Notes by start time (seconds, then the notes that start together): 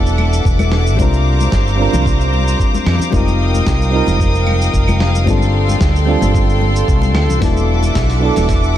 Already playing: E1 F#3 B3 D4 E4 A4 E5 F#5 D6
0.06 shaker
0.18 high conga, claves
0.33 shaker
0.45 E1, kick, shaker
0.59 high conga, claves, shaker
0.72 snare
0.86 shaker
0.96 C2 G3 C4 D4 C5 F5 A#5, kick, high conga, shaker
1.01 F4 A#4
1.13 shaker
1.40 high conga, shaker
1.52 G1, kick, snare, shaker
1.67 shaker
1.76 G3 C4 D4
1.80 F4 A#4
1.93 C2, high conga, low conga, shaker
2.06 kick, shaker
2.21 shaker
2.34 high conga
2.48 shaker
2.60 kick, shaker
2.74 high conga, shaker
2.86 F2, snare, claves
3.00 low conga, shaker
3.10 F1 G3 C4 D#4 A#4 F5 G5 D#6, kick, high conga, shaker
3.15 F4 A#4
3.28 shaker
3.54 high conga, shaker
3.67 C2, kick, snare, shaker
3.82 shaker
3.90 G3 C4 D#4
3.95 F4 A#4
4.07 F1, high conga, low conga, shaker
4.20 kick, shaker
4.35 shaker
4.47 high conga, claves
4.61 shaker
4.74 F1, kick, shaker
4.88 high conga, claves, shaker
5.00 snare
5.15 shaker
5.24 G1 G3 C4 D4 A4 G5 C6, kick, high conga, shaker
5.29 F4 A4
5.42 shaker
5.69 high conga, shaker
5.81 D2, kick, snare, shaker
5.96 shaker
6.05 G3 C4 D4
6.10 F4 A4
6.22 G1, high conga, low conga, shaker
6.35 kick, shaker
6.49 shaker
6.62 high conga
6.76 shaker
6.88 C2, kick, shaker
7.02 high conga, shaker
7.15 D2, snare, claves
7.29 C2, low conga, shaker
7.39 E1 F#3 B3 D4 E5 F#5 D6, kick, open hi-hat, high conga, shaker
7.43 E4 A4
7.57 shaker
7.83 high conga, shaker
7.95 B1, kick, snare, open hi-hat, shaker
8.10 open hi-hat, shaker
8.19 F#3 B3 D4
8.23 E4 A4
8.36 E1, open hi-hat, high conga, low conga, shaker
8.49 kick, open hi-hat, shaker
8.64 shaker